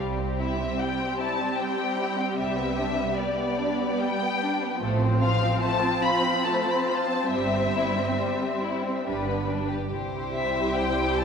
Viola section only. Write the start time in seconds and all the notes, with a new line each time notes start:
0.00 G3 C4
3.17 B3
4.82 F3 C4
7.33 G3
9.07 D4
9.91 G3 E4